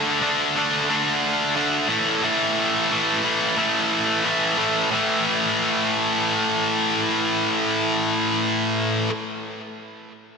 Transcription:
Already playing: D3 A3 D4
0.22 D3 A3 D4
0.56 D3 A3 D4
0.89 D3 A3 D4
1.56 D3 A3 D4
1.89 A2 E3 A3
2.23 A2 E3 A3
2.91 A2 E3 A3
3.24 A2 E3 A3
3.57 A2 E3 A3
4.24 A2 E3 A3
4.58 A2 E3 A3
4.91 A2 E3 A3

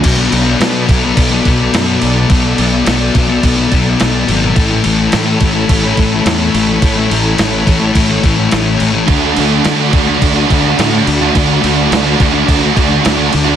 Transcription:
0.03 B1 B2 F#3 B3 A4 D5 B5, kick, crash
0.17 F#3 B3
0.31 B1 B2 F#3 B3, crash
0.60 B2 F#3, snare, crash
0.64 B3
0.89 B1 B2 F#3 B3, kick, crash
1.03 F#3 B3
1.17 B1, kick, crash
1.31 F#3 B3
1.45 B1 B2 F#3 B3, kick, crash
1.59 F#3 B3
1.73 F#2 B2 F#3 B3, snare, crash
2.01 B1 B2 F#3 B3, crash
2.16 F#3 B3
2.29 B1 B2 F#3 B3 A5, kick, crash
2.44 F#3 B3
2.58 B1 B2 F#3 B3, crash
2.85 B1 B2 F#3 B3, snare, crash
3.15 B1 B2 F#3 B3, kick, crash
3.28 F#3 B3
3.43 B1, kick, crash
3.57 F#3 B3
3.70 B1 B2 F#3 B3, kick, crash
3.87 F#3 B3
3.99 B1 B2 F#3 B3, snare, crash
4.28 G#1 B2 F#3 B3, crash
4.43 F#3 B3
4.56 A1 A2 E3 A3 C#5 B5, kick, crash
4.71 E3 A3
4.83 A1 A2 E3 A3, crash
5.12 A2 E3 A3, snare, crash
5.40 A1 A2 E3 A3, kick, crash
5.54 E3 A3
5.69 A1, kick, crash
5.82 E3 A3
5.96 A1 A2 E3 A3, kick, crash
6.11 E3 A3
6.25 E2 A2 E3 A3, snare, crash
6.54 A1 A2 E3 A3, crash
6.68 E3 A3
6.82 A1 A2 E3 A3, kick, crash
6.96 E3 A3
7.11 A1 A2 E3 A3, crash
7.37 A1 A2 E3 A3, snare, crash
7.66 A1 A2 E3 A3, kick, crash
7.79 E3 A3
7.95 A1, kick, crash
8.07 E3 A3
8.22 A1 A2 E3 A3, kick, crash
8.35 E3 A3
8.50 A1 A2 E3 A3, snare, crash
8.78 A1 A2 E3 A3, crash
8.93 E3 A3
9.07 D2 D3 A3 D4 F#4 D5 B5, kick, crash
9.22 A3 D4
9.36 D2 D3 A3 D4 F#4, crash
9.64 D3 A3 D4, snare, crash
9.68 F#4
9.79 A3 D4 F#4
9.92 D2 D3 A3 D4, kick, crash
9.96 F#4
10.06 A3 D4 F#4
10.22 D2, kick, crash
10.34 A3 D4 F#4
10.49 D2 D3 A3 D4 F#4, kick, crash
10.64 A3 D4
10.78 A2 D3 A3 D4 F#4, snare, crash
10.93 A3 D4 F#4
11.07 D2 D3 A3 D4, muted overdriven electric guitar stroke, crash
11.21 A3 D4 F#4
11.34 D2 D3 A3 D4, kick, crash
11.39 F#4
11.48 A3 D4
11.62 D2 D3 A3 D4, crash
11.66 F#4
11.91 D2 D3 A3 D4, snare, crash
11.95 F#4
12.05 A3 D4 F#4
12.19 D2 D3 A3 D4 F#4, kick, crash
12.33 A3 D4 F#4
12.48 D2, kick, crash
12.60 D4 F#4
12.65 A3
12.77 D2 D3 A3 D4 F#4, kick, crash
12.90 A3 D4
13.04 D2 D3 A3 D4 F#4, snare, crash
13.16 A3 D4 F#4
13.32 D2 D3 A3 D4, muted overdriven electric guitar stroke, crash
13.44 D4 F#4
13.50 A3

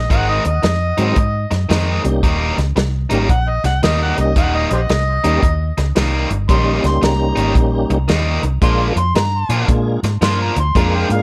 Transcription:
Already playing: D#5
0.10 G#1 D#3 G#3 C4 D#4 F#5, kick, closed hi-hat
0.29 D#5
0.45 D#2 D#5, muted overdriven electric guitar stroke, closed hi-hat
0.63 F2, muted overdriven electric guitar stroke, snare, closed hi-hat
0.97 G#2 D#3 F#3 G#3 C4 D#4 F#4, closed hi-hat
1.16 G#2, muted overdriven electric guitar stroke, kick, closed hi-hat
1.51 F#2, muted overdriven electric guitar stroke, snare, closed hi-hat
1.69 F2 D#3 G#3 C4 D#4, snare, closed hi-hat
2.04 C2 G3 A#3 C#4 D#4 G4, muted overdriven electric guitar stroke, closed hi-hat
2.23 D#1 D#3 G3 A#3 D#4, kick, closed hi-hat
2.58 C#2, muted overdriven electric guitar stroke, snare, closed hi-hat
2.76 C2, muted overdriven electric guitar stroke, snare, closed hi-hat
3.10 G#1 D#3 G3 A#3 C#4 D#4 G4, closed hi-hat
3.29 A#1 F#5, muted overdriven electric guitar stroke, kick, closed hi-hat
3.49 D#5
3.64 C2 F#5, muted overdriven electric guitar stroke, snare, closed hi-hat
3.83 D#2 D#3 G3 A#3 D#4 D#5, snare, closed hi-hat
4.02 F#5
4.17 C2 G3 A#3 C#4 D#4 G4 D#5, muted overdriven electric guitar stroke, closed hi-hat
4.36 D#1 D#3 G3 A#3 D#4 F#5, kick, closed hi-hat
4.55 D#5
4.70 A#1 G4 C5 D#5, muted overdriven electric guitar stroke, closed hi-hat
4.89 C2, muted overdriven electric guitar stroke, snare, closed hi-hat
5.24 D#2 D#3 G3 A#3 C#4 D#4 G4, closed hi-hat
5.42 D#2, muted overdriven electric guitar stroke, kick, closed hi-hat
5.77 C#2, muted overdriven electric guitar stroke, snare, closed hi-hat
5.96 C2 D#3 G3 A#3 D#4, snare, closed hi-hat
6.30 G1, muted overdriven electric guitar stroke, closed hi-hat
6.49 A#1 D#3 G3 A#3 C#4 D#4 G4 C6, kick, closed hi-hat
6.84 C#2 C6, muted overdriven electric guitar stroke, snare, closed hi-hat
7.02 C2 A#5, muted overdriven electric guitar stroke, snare, closed hi-hat
7.36 G#1 D#3 G3 A#3 D#4, closed hi-hat
7.55 A#1, muted overdriven electric guitar stroke, kick, closed hi-hat
7.90 C2, muted overdriven electric guitar stroke, closed hi-hat
8.08 D#2 D#3 G3 A#3 D#4, snare, closed hi-hat
8.43 C2, muted overdriven electric guitar stroke, closed hi-hat
8.61 A#1 F3 G#3 A#3 D4 F4 G#4 C6, kick, closed hi-hat
8.96 F2 C6, muted overdriven electric guitar stroke, closed hi-hat
9.15 G2 A#5, muted overdriven electric guitar stroke, snare, closed hi-hat
9.49 A#2 F3 A#3 D4 F4, closed hi-hat
9.68 A#2 G#3 A#3 D4 F4 G#4, muted overdriven electric guitar stroke, kick, closed hi-hat
10.03 G#2, muted overdriven electric guitar stroke, snare, closed hi-hat
10.21 G2 F3 A#3 D4 F4 C6, snare, closed hi-hat
10.42 A#5
10.56 D2 C6, muted overdriven electric guitar stroke, closed hi-hat
10.75 F2 F3 G#3 A#3 D4 F4 G#4 A#5, kick, closed hi-hat
10.95 G5
11.10 G#2 F5, muted overdriven electric guitar stroke, closed hi-hat

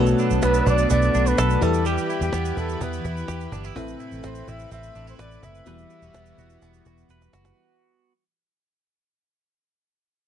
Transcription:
Already playing: B1 B2 F#3 A3 B3 D4 F#4 A4 B4
0.06 shaker
0.18 D4, shaker
0.30 B1, shaker
0.42 B1 B3 B4, cajon slap, shaker
0.54 shaker
0.66 B1 D4 D5, cajon bass, shaker
0.78 shaker
0.90 B1 B3 D5, cajon bass, cajon slap, shaker
1.02 shaker
1.14 B1 D4, shaker
1.26 B4, shaker
1.38 B1 A4, cajon slap, shaker
1.50 shaker
1.61 E2 E3 G3 E4 G4 A4 B4, cajon bass, shaker
1.74 shaker
1.85 G3 G4, shaker
1.98 shaker
2.10 E4, shaker
2.21 E2 G4, shaker
2.33 E2 B3, cajon slap, shaker
2.45 shaker
2.57 E2 E4 A4, cajon bass, shaker
2.69 shaker
2.81 E2 B3 B4, cajon bass, cajon slap, shaker
2.93 shaker
3.04 E2 E4, cajon bass, shaker
3.17 shaker
3.28 E2 G4, cajon slap, shaker
3.41 shaker
3.52 G1 D4, cajon bass, shaker
3.64 E4, shaker
3.76 A1 A2 C3 A3 C4 E4 A4 B4 E5, cajon bass, shaker
3.88 shaker
4.00 E4, shaker
4.12 A1, shaker
4.23 A1 C4 C5, cajon slap, shaker
4.35 shaker
4.47 A1 E4 E5, cajon bass, shaker
4.59 shaker
4.72 A1 C4 E5, cajon bass, cajon slap, shaker
4.83 shaker
4.95 A1 D4, shaker
5.07 E4 C5, shaker
5.19 A1 B4 D5, cajon slap, shaker
5.31 shaker
5.43 F#1 E4 E5, cajon bass, shaker
5.55 shaker
5.66 E1 E3 G3 B3 E4 F#4 B4 E5, shaker
5.78 shaker
5.90 E4, shaker
6.02 E1 F#4, shaker
6.14 E1 B3, cajon slap, shaker
6.26 shaker
6.38 E1 F#4, cajon bass, shaker
6.50 shaker
6.62 E1 B3, cajon bass, cajon slap, shaker
6.74 shaker
6.85 E1 F#4, cajon bass, shaker
6.98 shaker
7.09 E1 B4, cajon slap, shaker
7.22 cajon slap, shaker
7.33 F#1 F#4, cajon slap, shaker
7.45 cajon slap, shaker

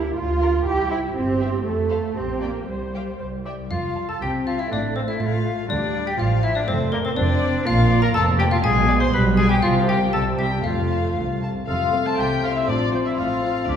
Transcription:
Already playing: E4 G4
0.16 D2 F4
0.41 A#4 F5
0.65 C2 E4 G4
0.90 E4 G4 C5 E5
1.15 G1 C4 G4
1.40 G4 C5 E5
1.65 F2 A3 A4
1.90 A4 C5 F5
2.16 A#1 C4 G4
2.41 A#3 G4 D5 G5
2.68 C2 G3 C5
2.94 G4 F5 G5
3.20 C2 C5
3.45 G4 D5 E5 G5
3.71 F1 F2 F4 F5
3.97 A5
4.09 A4 A5
4.21 C2 C4 G4 G5
4.47 F4 F5 A5
4.59 E4 E5
4.71 A1 A2 A3 D4 D5
4.96 C4 C5 F5
5.08 E4 E5
5.20 A1 A2 F4 F5
5.26 E4
5.33 F4
5.46 F5
5.68 D2 G3 D4 D5
5.95 F5
6.06 G4 G5
6.18 A1 A2 F3 F4 F5
6.43 E4 E5 F5
6.55 D4 D5
6.68 F1 F2 A3 C4 C5
6.92 A#3 A#4 D5
7.05 C4 C5
7.16 F1 F2 C4 D4 D5
7.43 D5
7.66 A#1 A#2 A#3 F4 F5
7.92 D5
8.02 A#4 A#5
8.14 F1 F2 A4 A5
8.39 G4 D5 G5
8.51 F4 F5
8.63 B1 B2 G#3 G#4 G#5
8.88 D5
9.00 C5 C6
9.14 B1 B2 G3 B4 B5
9.37 G#4 D5 G#5
9.49 G4 G5
9.62 C2 C3 F3 F4 F5
9.88 G4 F5 G5
10.13 C2 C3 G3 A4 A5
10.38 G4 E5 G5
10.64 F1 F2 A3 F4 F5
10.91 A5
11.17 C2 D2
11.41 C2 A5
11.67 F1 F2 A3 C4 F4 A4 F5 C6
11.93 A3 C4
12.06 A4 A5
12.18 C2 G4 G5
12.43 A3 C4 F4 F5
12.56 E4 E5
12.67 A1 A2 F3 D4 F4 D5
12.92 F3 C4 C5
13.05 E4 E5
13.18 A1 A2 F4 A4 F5
13.44 F3 C4
13.68 D2 D4 G4 D5 D6

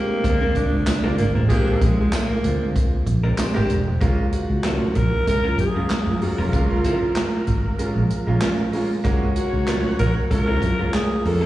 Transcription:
Already playing: G#3 A#3 C4 D4 G4
0.24 D2 G#3 C4 D4 A#4, kick, closed hi-hat
0.40 G#3 C4 D4 A#4
0.55 D4 F4, kick, closed hi-hat
0.71 C#2 D4 F4
0.86 D4 F4, snare, clap, closed hi-hat, tambourine
1.03 D2 G#3 C4 D4 F4 A#4
1.18 G#1 A#3, closed hi-hat
1.34 A1 G#3 C4 D4 G4 A#4
1.49 G#3 A#3 C4 D4 F4 G4 G#4, kick, closed hi-hat
1.81 A#1 G#3, kick, closed hi-hat
1.97 G#3 D4 F4
2.12 A#3 D4 F4, snare, clap, closed hi-hat, tambourine
2.30 muted fingered electric bass stroke
2.43 D2 G#3 C4 D4 F4, closed hi-hat
2.76 kick, closed hi-hat
3.06 A#1 D4 F4, kick, closed hi-hat
3.23 G#3 C4 D4 F4 A#4
3.38 G#3 C4 D4 G4 C5, snare, clap, closed hi-hat, tambourine
3.54 G#1 G#3 C4 D4 G4 A#4
3.70 E1, closed hi-hat
3.86 F1 D4 F4
4.01 F#1 G#3 A#3 C#4 F4, kick, closed hi-hat
4.32 F#4, closed hi-hat
4.49 C#2 C#4 F4
4.64 F#3 C#4 F4 A#4, snare, clap, closed hi-hat
4.81 muted fingered electric bass stroke
4.95 A#1 A#4, kick, closed hi-hat
5.12 C#4 D#4
5.26 C#2 F#3 G#3 A#3 C#4 G#4 A#4, kick, closed hi-hat
5.44 F#3 C#4 F4 A#4
5.58 F#2 G#4, kick, closed hi-hat
5.74 F#3 G#3 A#3 C#4 F4 A#4
5.90 snare, clap, closed hi-hat
6.07 F#2
6.21 G#3 A#3 C#4 F4 F#4, open hi-hat
6.38 F1 F#3 C#4 F4 A#4
6.52 F#1 G#3 A#3 C#4 F4, kick, closed hi-hat
6.84 F#3 C#4 F4 A#4, closed hi-hat
7.01 C#4 F4, muted fingered electric bass stroke
7.16 snare, clap, closed hi-hat
7.47 G#1, kick, closed hi-hat
7.64 C#4 F4
7.78 G#3 A#3 C#4 F4, closed hi-hat
7.95 A#1
8.10 closed hi-hat
8.26 A#1 G#3 A#3 C#4 F4
8.41 F#3 C#4 F4 A#4, snare, clap, closed hi-hat
8.73 G#3 A#3 C#4 F4, open hi-hat
9.04 F#1 G#3 A#3 C#4 F#4 A#4 C#5, kick, closed hi-hat
9.36 F#4, closed hi-hat
9.52 C#2 C#4 F4
9.67 F#3 C#4 F4 A#4, snare, clap, closed hi-hat
9.84 muted fingered electric bass stroke
9.99 A#1 A#4, kick, closed hi-hat
10.16 C#4 F4
10.30 C#2 G#3 A#3 C#4 F4 A#4, kick, closed hi-hat
10.47 F#3 C#4 F4 A#4
10.62 F#2, kick, closed hi-hat
10.78 F#3 G#3 A#3 C#4 F4 A#4
10.94 G#4, snare, clap, closed hi-hat
11.25 F2 G#3 A#3 C#4 F4 A4, open hi-hat
11.41 C#4 F4 A#4

